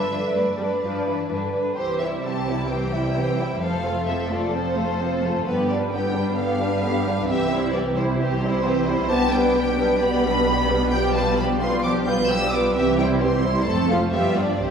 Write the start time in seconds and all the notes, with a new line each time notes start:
Already playing: D3 D4 E5
0.09 G2 D3 D4 B4
0.33 G2 A3 D4 B4 D5
0.57 G2 G3 D4 B4
0.82 G2 F3 D4 B4
1.05 G2 E3 D4 B4
1.29 G2 D3 D4 B4
1.53 G2 D4 B4
1.76 C2 C3 E3 C4 G4 C5
1.99 G3 E4 E5
2.23 E3 C4 G4 C5 A5
2.49 G3 E4 E5
2.68 E3 C4 G4 C5 G5
2.92 G3 E4 E5
3.14 E3 C4 G4 C5
3.38 G3 E4 E5
3.60 F1 F2 F3 C4 A4 C5 F5
3.84 A3 F4 A4
4.06 F3 C4 A4 C5 E5
4.29 A3 F4 A4 D5
4.52 F3 C4 A4 C5
4.76 A3 F4 A4
5.00 F3 C4 A4 C5
5.22 A3 F4 A4
5.45 G1 G2 D3 B3 G4 B4
5.67 G3 D4 B4 D5
5.91 D3 B3 G4 G5
6.13 G3 D4 B4
6.37 D3 B3 G4 F5
6.58 G3 D4 B4
6.82 D3 B3 G4
7.05 G3 D4 B4
7.27 C2 C3 E3 C4 G4 E5
7.50 G3 E4 C5
7.72 E3 C4 G4 D5
7.96 G3 E4 C5
8.18 E3 C4 G4 C5
8.42 G3 E4 C5
8.63 E3 C4 G4
8.87 G3 E4 C5
9.09 B1 B2 B3 D4 G4 A5
9.32 G3 B3 D4 B4 G5
9.54 B3 D4 G4
9.77 G3 B3 D4 B4
9.99 B3 D4 G4 B5
10.24 G3 B3 D4 B4
10.46 B3 D4 G4
10.69 G3 B3 D4 B4
10.90 F3 D4 G4 G5
11.14 G3 B3 F4 B4 A5
11.37 F3 D4 G4 B5
11.60 G3 B3 F4 B4 C6
11.83 F3 D4 G4 D6
12.06 G3 B3 F4 B4 G6
12.29 F3 D4 G4 E6
12.51 G3 B3 F4 B4 D6
12.74 C2 C3 E3 C4 G4 E5
12.97 G3 E4 C5 G5
13.18 E3 C4 G4 C6
13.42 G3 E4 C5
13.66 F1 F2 A3 C4 A4 A5
13.90 F3 A3 F4 C5 F5
14.13 G1 G2 G3 B3 F4 G4 E5
14.36 F3 G3 D4 F4 D5
14.60 C2 C3 G3 C4 G4 C5